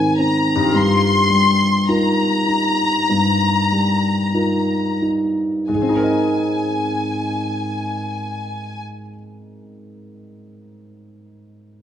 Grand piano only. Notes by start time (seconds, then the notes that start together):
Already playing: G#2 D#3 C4 D#4 A#4
0.18 C4
0.74 G2
1.30 G3
1.89 D#4 F4 A#4
2.48 D#4
3.09 G2
3.72 G3
4.34 D#4 F4 A#4
5.02 D#4
5.69 G#2
5.76 G#3
5.83 C4
5.90 D#4
5.97 A#4
6.04 D#5